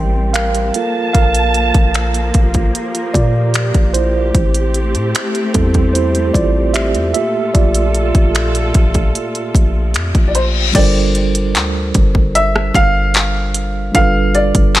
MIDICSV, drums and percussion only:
0, 0, Header, 1, 2, 480
1, 0, Start_track
1, 0, Tempo, 800000
1, 688, Time_signature, 4, 2, 24, 8
1, 8880, End_track
2, 0, Start_track
2, 0, Title_t, "Drums"
2, 204, Note_on_c, 9, 42, 58
2, 213, Note_on_c, 9, 26, 119
2, 264, Note_off_c, 9, 42, 0
2, 273, Note_off_c, 9, 26, 0
2, 327, Note_on_c, 9, 42, 46
2, 387, Note_off_c, 9, 42, 0
2, 446, Note_on_c, 9, 42, 75
2, 506, Note_off_c, 9, 42, 0
2, 687, Note_on_c, 9, 36, 104
2, 687, Note_on_c, 9, 42, 74
2, 747, Note_off_c, 9, 36, 0
2, 747, Note_off_c, 9, 42, 0
2, 807, Note_on_c, 9, 42, 65
2, 867, Note_off_c, 9, 42, 0
2, 926, Note_on_c, 9, 42, 51
2, 986, Note_off_c, 9, 42, 0
2, 1047, Note_on_c, 9, 36, 96
2, 1047, Note_on_c, 9, 42, 43
2, 1107, Note_off_c, 9, 36, 0
2, 1107, Note_off_c, 9, 42, 0
2, 1167, Note_on_c, 9, 42, 64
2, 1172, Note_on_c, 9, 26, 112
2, 1227, Note_off_c, 9, 42, 0
2, 1232, Note_off_c, 9, 26, 0
2, 1286, Note_on_c, 9, 42, 45
2, 1346, Note_off_c, 9, 42, 0
2, 1405, Note_on_c, 9, 42, 68
2, 1407, Note_on_c, 9, 36, 97
2, 1465, Note_off_c, 9, 42, 0
2, 1467, Note_off_c, 9, 36, 0
2, 1524, Note_on_c, 9, 42, 44
2, 1528, Note_on_c, 9, 36, 95
2, 1584, Note_off_c, 9, 42, 0
2, 1588, Note_off_c, 9, 36, 0
2, 1650, Note_on_c, 9, 42, 78
2, 1710, Note_off_c, 9, 42, 0
2, 1768, Note_on_c, 9, 42, 46
2, 1828, Note_off_c, 9, 42, 0
2, 1886, Note_on_c, 9, 36, 83
2, 1891, Note_on_c, 9, 42, 64
2, 1946, Note_off_c, 9, 36, 0
2, 1951, Note_off_c, 9, 42, 0
2, 2124, Note_on_c, 9, 42, 59
2, 2133, Note_on_c, 9, 26, 112
2, 2184, Note_off_c, 9, 42, 0
2, 2193, Note_off_c, 9, 26, 0
2, 2247, Note_on_c, 9, 36, 81
2, 2247, Note_on_c, 9, 42, 44
2, 2307, Note_off_c, 9, 36, 0
2, 2307, Note_off_c, 9, 42, 0
2, 2366, Note_on_c, 9, 42, 79
2, 2426, Note_off_c, 9, 42, 0
2, 2607, Note_on_c, 9, 36, 105
2, 2608, Note_on_c, 9, 42, 68
2, 2667, Note_off_c, 9, 36, 0
2, 2668, Note_off_c, 9, 42, 0
2, 2727, Note_on_c, 9, 42, 68
2, 2787, Note_off_c, 9, 42, 0
2, 2847, Note_on_c, 9, 42, 50
2, 2907, Note_off_c, 9, 42, 0
2, 2968, Note_on_c, 9, 42, 43
2, 3028, Note_off_c, 9, 42, 0
2, 3089, Note_on_c, 9, 42, 68
2, 3094, Note_on_c, 9, 26, 113
2, 3149, Note_off_c, 9, 42, 0
2, 3154, Note_off_c, 9, 26, 0
2, 3209, Note_on_c, 9, 42, 46
2, 3269, Note_off_c, 9, 42, 0
2, 3326, Note_on_c, 9, 42, 68
2, 3328, Note_on_c, 9, 36, 98
2, 3386, Note_off_c, 9, 42, 0
2, 3388, Note_off_c, 9, 36, 0
2, 3445, Note_on_c, 9, 42, 42
2, 3448, Note_on_c, 9, 36, 93
2, 3505, Note_off_c, 9, 42, 0
2, 3508, Note_off_c, 9, 36, 0
2, 3571, Note_on_c, 9, 42, 71
2, 3631, Note_off_c, 9, 42, 0
2, 3689, Note_on_c, 9, 42, 48
2, 3749, Note_off_c, 9, 42, 0
2, 3807, Note_on_c, 9, 36, 83
2, 3812, Note_on_c, 9, 42, 60
2, 3867, Note_off_c, 9, 36, 0
2, 3872, Note_off_c, 9, 42, 0
2, 4045, Note_on_c, 9, 42, 59
2, 4054, Note_on_c, 9, 26, 118
2, 4105, Note_off_c, 9, 42, 0
2, 4114, Note_off_c, 9, 26, 0
2, 4167, Note_on_c, 9, 42, 48
2, 4227, Note_off_c, 9, 42, 0
2, 4287, Note_on_c, 9, 42, 75
2, 4347, Note_off_c, 9, 42, 0
2, 4528, Note_on_c, 9, 36, 106
2, 4528, Note_on_c, 9, 42, 71
2, 4588, Note_off_c, 9, 36, 0
2, 4588, Note_off_c, 9, 42, 0
2, 4647, Note_on_c, 9, 42, 68
2, 4707, Note_off_c, 9, 42, 0
2, 4767, Note_on_c, 9, 42, 49
2, 4827, Note_off_c, 9, 42, 0
2, 4888, Note_on_c, 9, 36, 92
2, 4888, Note_on_c, 9, 42, 41
2, 4948, Note_off_c, 9, 36, 0
2, 4948, Note_off_c, 9, 42, 0
2, 5009, Note_on_c, 9, 42, 62
2, 5014, Note_on_c, 9, 26, 114
2, 5069, Note_off_c, 9, 42, 0
2, 5074, Note_off_c, 9, 26, 0
2, 5129, Note_on_c, 9, 42, 48
2, 5189, Note_off_c, 9, 42, 0
2, 5247, Note_on_c, 9, 42, 68
2, 5249, Note_on_c, 9, 36, 104
2, 5307, Note_off_c, 9, 42, 0
2, 5309, Note_off_c, 9, 36, 0
2, 5366, Note_on_c, 9, 42, 44
2, 5369, Note_on_c, 9, 36, 92
2, 5426, Note_off_c, 9, 42, 0
2, 5429, Note_off_c, 9, 36, 0
2, 5492, Note_on_c, 9, 42, 78
2, 5552, Note_off_c, 9, 42, 0
2, 5610, Note_on_c, 9, 42, 45
2, 5670, Note_off_c, 9, 42, 0
2, 5727, Note_on_c, 9, 36, 83
2, 5733, Note_on_c, 9, 42, 58
2, 5787, Note_off_c, 9, 36, 0
2, 5793, Note_off_c, 9, 42, 0
2, 5966, Note_on_c, 9, 42, 57
2, 5975, Note_on_c, 9, 26, 114
2, 6026, Note_off_c, 9, 42, 0
2, 6035, Note_off_c, 9, 26, 0
2, 6089, Note_on_c, 9, 36, 85
2, 6089, Note_on_c, 9, 42, 46
2, 6149, Note_off_c, 9, 36, 0
2, 6149, Note_off_c, 9, 42, 0
2, 6208, Note_on_c, 9, 42, 76
2, 6268, Note_off_c, 9, 42, 0
2, 6449, Note_on_c, 9, 36, 114
2, 6450, Note_on_c, 9, 42, 80
2, 6450, Note_on_c, 9, 49, 106
2, 6509, Note_off_c, 9, 36, 0
2, 6510, Note_off_c, 9, 42, 0
2, 6510, Note_off_c, 9, 49, 0
2, 6690, Note_on_c, 9, 42, 44
2, 6750, Note_off_c, 9, 42, 0
2, 6810, Note_on_c, 9, 42, 72
2, 6870, Note_off_c, 9, 42, 0
2, 6929, Note_on_c, 9, 42, 70
2, 6935, Note_on_c, 9, 39, 120
2, 6989, Note_off_c, 9, 42, 0
2, 6995, Note_off_c, 9, 39, 0
2, 7167, Note_on_c, 9, 42, 70
2, 7169, Note_on_c, 9, 36, 108
2, 7227, Note_off_c, 9, 42, 0
2, 7229, Note_off_c, 9, 36, 0
2, 7289, Note_on_c, 9, 36, 96
2, 7349, Note_off_c, 9, 36, 0
2, 7411, Note_on_c, 9, 42, 80
2, 7471, Note_off_c, 9, 42, 0
2, 7534, Note_on_c, 9, 37, 115
2, 7594, Note_off_c, 9, 37, 0
2, 7647, Note_on_c, 9, 36, 90
2, 7652, Note_on_c, 9, 42, 69
2, 7707, Note_off_c, 9, 36, 0
2, 7712, Note_off_c, 9, 42, 0
2, 7885, Note_on_c, 9, 42, 58
2, 7894, Note_on_c, 9, 39, 117
2, 7945, Note_off_c, 9, 42, 0
2, 7954, Note_off_c, 9, 39, 0
2, 8127, Note_on_c, 9, 42, 90
2, 8187, Note_off_c, 9, 42, 0
2, 8368, Note_on_c, 9, 36, 110
2, 8368, Note_on_c, 9, 42, 78
2, 8428, Note_off_c, 9, 36, 0
2, 8428, Note_off_c, 9, 42, 0
2, 8608, Note_on_c, 9, 42, 44
2, 8668, Note_off_c, 9, 42, 0
2, 8728, Note_on_c, 9, 36, 99
2, 8728, Note_on_c, 9, 42, 73
2, 8788, Note_off_c, 9, 36, 0
2, 8788, Note_off_c, 9, 42, 0
2, 8849, Note_on_c, 9, 42, 68
2, 8854, Note_on_c, 9, 39, 118
2, 8880, Note_off_c, 9, 39, 0
2, 8880, Note_off_c, 9, 42, 0
2, 8880, End_track
0, 0, End_of_file